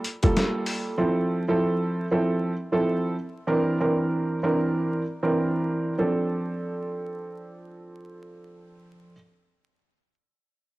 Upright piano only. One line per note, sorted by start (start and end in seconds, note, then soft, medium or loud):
0.23 0.93 G3 medium
0.23 0.93 A#3 medium
0.23 0.94 F4 medium
0.23 0.94 A4 loud
0.98 1.43 F3 medium
0.98 1.43 C4 medium
0.98 1.43 E4 medium
0.98 1.43 A4 medium
1.48 2.05 F3 medium
1.48 2.05 C4 medium
1.48 2.05 E4 medium
1.48 2.05 A4 loud
2.11 2.52 F3 medium
2.11 2.52 C4 medium
2.11 2.53 E4 medium
2.11 2.53 A4 loud
2.72 3.14 F3 medium
2.72 3.14 C4 medium
2.72 3.14 E4 medium
2.72 3.14 A4 loud
3.47 3.77 E3 medium
3.47 3.77 C4 medium
3.47 3.77 D4 medium
3.47 3.77 A#4 loud
3.80 4.38 E3 medium
3.80 4.38 C4 medium
3.80 4.39 D4 medium
3.80 4.39 A#4 medium
4.43 5.01 E3 medium
4.43 5.01 C4 medium
4.43 5.01 D4 medium
4.43 5.01 A#4 loud
5.23 5.93 E3 medium
5.23 5.93 C4 medium
5.23 5.94 D4 medium
5.23 5.94 A#4 medium
5.98 9.12 F3 medium
5.98 9.12 C4 medium
5.98 9.13 D4 medium
5.98 9.13 A4 medium